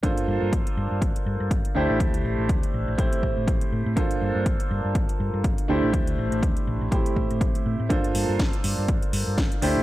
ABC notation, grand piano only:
X:1
M:4/4
L:1/8
Q:"Swing 16ths" 1/4=122
K:Gdor
V:1 name="Grand piano"
[B,DFAc]6- [B,DFAc] [A,DEGc]- | [A,DEGc]4 [A,CEGc]4 | [B,DFAc]6- [B,DFAc] [A,DEGc]- | [A,DEGc]4 [A,CEGc]4 |
[B,DFAc]6- [B,DFAc] [A,DEGc] |]